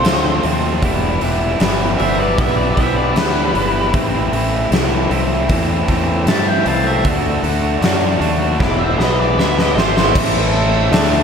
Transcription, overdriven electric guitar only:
0.04 0.42 F3 medium
0.04 0.43 A3 medium
0.04 0.43 C4 medium
0.04 0.44 F4 medium
0.43 0.80 F3 medium
0.43 0.80 A3 medium
0.43 0.81 C4 medium
0.43 0.81 F4 medium
0.82 1.21 E3 medium
0.82 1.21 G3 medium
0.82 1.22 B3 loud
0.82 1.23 E4 loud
1.22 1.59 E3 medium
1.22 1.59 G3 medium
1.22 1.60 B3 medium
1.22 1.61 E4 medium
1.60 1.98 E3 medium
1.60 1.97 G3 medium
1.60 1.98 B3 medium
1.60 1.99 E4 medium
1.98 2.37 E3 medium
1.98 2.38 G3 medium
1.98 2.38 B3 medium
1.98 2.39 E4 medium
2.38 2.76 E3 medium
2.38 2.76 G3 medium
2.38 2.77 B3 medium
2.38 2.77 E4 medium
2.77 3.14 E3 medium
2.77 3.15 G3 medium
2.77 3.15 B3 loud
2.77 3.16 E4 loud
3.15 3.53 E3 medium
3.15 3.54 G3 medium
3.15 3.54 B3 medium
3.15 3.55 E4 medium
3.54 3.91 E3 medium
3.54 3.91 G3 medium
3.54 3.92 B3 medium
3.54 3.92 E4 medium
3.94 4.30 A2 medium
3.94 4.31 E3 medium
3.94 4.31 A3 medium
3.94 4.32 C4 medium
3.94 4.32 E4 loud
4.32 4.70 A2 medium
4.32 4.71 E3 medium
4.32 4.71 A3 medium
4.32 4.71 C4 medium
4.32 4.72 E4 medium
4.71 5.08 A2 medium
4.71 5.09 E3 medium
4.71 5.10 A3 medium
4.71 5.10 C4 medium
4.71 5.10 E4 medium
5.10 5.48 A2 medium
5.10 5.48 E3 medium
5.10 5.48 A3 medium
5.10 5.49 C4 medium
5.10 5.49 E4 medium
5.49 5.86 A2 medium
5.49 5.87 E3 medium
5.49 5.87 A3 medium
5.49 5.88 C4 medium
5.49 5.88 E4 medium
5.87 6.26 A2 medium
5.87 6.26 E3 medium
5.87 6.27 A3 loud
5.87 6.27 C4 loud
5.87 6.28 E4 loud
6.27 6.64 A2 medium
6.27 6.65 E3 medium
6.27 6.65 A3 medium
6.27 6.66 C4 medium
6.27 6.66 E4 medium
6.65 7.02 A2 medium
6.65 7.02 E3 medium
6.65 7.02 A3 medium
6.65 7.03 C4 medium
6.65 7.03 E4 medium
7.05 7.42 D3 medium
7.05 7.43 A3 medium
7.05 7.44 D4 medium
7.05 7.44 F#4 loud
7.44 7.80 D3 medium
7.44 7.81 A3 medium
7.44 7.81 D4 medium
7.44 7.82 F#4 medium
7.81 8.18 D3 medium
7.81 8.19 A3 medium
7.81 8.20 D4 medium
7.81 8.20 F#4 medium
8.20 8.57 D3 medium
8.20 8.57 A3 medium
8.20 8.57 D4 medium
8.20 8.58 F#4 loud
8.59 8.96 E3 medium
8.59 8.97 G#3 medium
8.59 8.97 B3 medium
8.59 8.98 E4 loud
8.97 9.36 E3 medium
8.97 9.37 G#3 medium
8.97 9.38 B3 loud
8.97 9.38 E4 medium
9.37 9.75 E3 medium
9.37 9.75 G#3 medium
9.37 9.77 B3 medium
9.37 9.77 E4 medium
9.76 10.13 E3 medium
9.76 10.13 G#3 medium
9.76 10.13 B3 medium
9.76 10.13 E4 medium
10.15 10.91 A2 loud
10.15 10.92 E3 loud
10.15 10.91 A3 loud
10.92 11.23 D3 medium
10.92 11.23 A3 loud
10.92 11.23 D4 loud

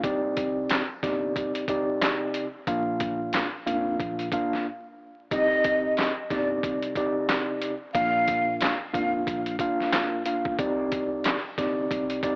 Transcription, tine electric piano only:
0.04 0.81 C3 medium
0.04 0.82 C4 medium
0.04 0.82 D#4 medium
0.04 0.82 G4 medium
0.04 0.82 D5 loud
1.03 1.64 C3 medium
1.03 1.64 C4 medium
1.03 1.64 D#4 medium
1.03 1.65 G4 medium
1.03 1.65 D5 loud
1.69 2.46 C3 medium
1.69 2.46 C4 medium
1.69 2.46 D#4 medium
1.69 2.47 G4 medium
1.69 2.47 D5 loud
2.68 3.45 A#2 medium
2.68 3.45 A#3 medium
2.68 3.45 D4 medium
2.68 3.45 F4 medium
2.68 3.45 F5 loud
3.66 4.28 A#2 medium
3.66 4.28 A#3 medium
3.66 4.28 D4 medium
3.66 4.28 F4 medium
3.66 4.28 F5 loud
4.33 4.65 A#2 medium
4.33 4.65 A#3 medium
4.33 4.65 D4 medium
4.33 4.66 F4 medium
4.33 4.66 F5 loud
5.32 6.09 C3 medium
5.32 6.09 C4 medium
5.32 6.09 D#4 medium
5.32 6.09 G4 medium
5.32 6.09 D#5 loud
6.30 6.92 C3 medium
6.30 6.92 C4 medium
6.30 6.92 D#4 medium
6.30 6.92 G4 medium
6.30 6.92 D5 loud
6.96 7.74 C3 medium
6.96 7.74 C4 medium
6.96 7.74 D#4 medium
6.96 7.74 G4 medium
6.96 7.74 D5 loud
7.95 8.73 A#2 medium
7.95 8.73 A#3 medium
7.95 8.73 D4 medium
7.95 8.73 F4 medium
7.95 8.73 F5 loud
8.93 9.55 A#2 medium
8.93 9.55 A#3 medium
8.93 9.55 D4 medium
8.93 9.55 F4 medium
8.93 9.55 F5 loud
9.60 10.22 A#2 medium
9.60 10.22 A#3 medium
9.60 10.22 D4 medium
9.60 10.22 F4 medium
9.60 10.22 F5 loud
10.25 10.56 A#2 medium
10.25 10.56 A#3 medium
10.25 10.56 D4 medium
10.25 10.57 F4 medium
10.25 10.57 F5 medium
10.59 11.36 C3 medium
10.59 11.37 C4 medium
10.59 11.37 D#4 medium
10.59 11.37 G4 medium
10.59 11.37 D5 loud
11.58 12.19 C3 medium
11.58 12.19 C4 medium
11.58 12.19 D#4 medium
11.58 12.19 G4 medium
11.58 12.20 D5 loud
12.24 12.36 C3 medium
12.24 12.36 C4 medium
12.24 12.36 D#4 medium
12.24 12.36 G4 medium
12.24 12.36 D5 loud

